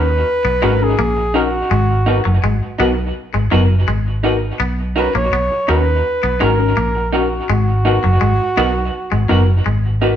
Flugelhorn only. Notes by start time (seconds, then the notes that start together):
Already playing: B4
0.83 G#4
1.37 F#4
4.98 B4
5.16 C#5
5.71 B4
6.43 A#4
7.15 F#4
7.51 F#4